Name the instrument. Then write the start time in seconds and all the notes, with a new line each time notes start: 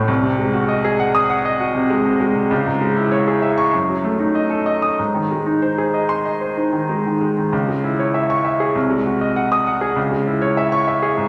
grand piano
Already playing: A2 A3 F#4 A4 C#5 F#5 C#6
0.08 C2
0.23 C3
0.39 G#3
0.53 F#4
0.69 D#5
0.84 G#4
1.00 F#5
1.15 D#6
1.30 F#5
1.45 D#5
1.60 F#4
1.75 C3
1.90 G#3
2.05 C3
2.20 G#3
2.35 C3
2.51 C#2
2.66 G#2
2.81 G#3
2.97 E4
3.12 C#5
3.28 G#4
3.42 E5
3.58 C#6
3.73 F#2
3.89 F#3
4.04 A3
4.19 D#4
4.35 D#5
4.50 A4
4.66 D#5
4.82 D#6
4.99 G#2
5.14 D#3
5.31 G#3
5.46 D#4
5.62 C5
5.78 G#4
5.94 D#5
6.09 C6
6.25 D#5
6.41 C5
6.57 D#4
6.73 D#3
6.89 G#3
7.06 D#3
7.21 G#3
7.37 D#3
7.53 C#2
7.68 G#3
7.84 E4
7.99 C#5
8.14 E5
8.30 C#6
8.45 E5
8.60 G#4
8.75 C2
8.90 G#3
9.06 F#4
9.21 D#5
9.36 F#5
9.52 D#6
9.67 F#5
9.81 G#4
9.96 C#2
10.11 G#3
10.27 E4
10.42 C#5
10.57 E5
10.72 C#6
10.87 E5
11.02 G#4
11.17 G#2